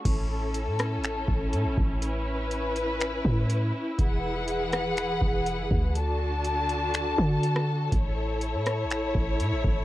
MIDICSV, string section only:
0, 0, Header, 1, 2, 480
1, 0, Start_track
1, 0, Key_signature, 3, "major"
1, 0, Tempo, 491803
1, 52, Time_signature, 4, 2, 24, 8
1, 9609, End_track
2, 0, Start_track
2, 0, Title_t, "String section"
2, 0, Program_c, 0, 48
2, 53, Note_on_c, 0, 61, 73
2, 53, Note_on_c, 0, 64, 71
2, 53, Note_on_c, 0, 69, 83
2, 1953, Note_off_c, 0, 69, 0
2, 1972, Note_on_c, 0, 71, 87
2, 3854, Note_off_c, 0, 61, 0
2, 3873, Note_off_c, 0, 71, 0
2, 3892, Note_on_c, 0, 52, 79
2, 3892, Note_on_c, 0, 68, 72
2, 3892, Note_on_c, 0, 71, 69
2, 3892, Note_on_c, 0, 78, 86
2, 5773, Note_off_c, 0, 64, 0
2, 5792, Note_off_c, 0, 68, 0
2, 5792, Note_off_c, 0, 71, 0
2, 5793, Note_off_c, 0, 52, 0
2, 5793, Note_off_c, 0, 78, 0
2, 5811, Note_on_c, 0, 62, 67
2, 5811, Note_on_c, 0, 69, 72
2, 5812, Note_on_c, 0, 50, 75
2, 5812, Note_on_c, 0, 66, 71
2, 5812, Note_on_c, 0, 81, 83
2, 7712, Note_off_c, 0, 62, 0
2, 7713, Note_off_c, 0, 50, 0
2, 7713, Note_off_c, 0, 66, 0
2, 7713, Note_off_c, 0, 81, 0
2, 7731, Note_on_c, 0, 64, 77
2, 7731, Note_on_c, 0, 73, 86
2, 9609, Note_off_c, 0, 64, 0
2, 9609, Note_off_c, 0, 69, 0
2, 9609, Note_off_c, 0, 73, 0
2, 9609, End_track
0, 0, End_of_file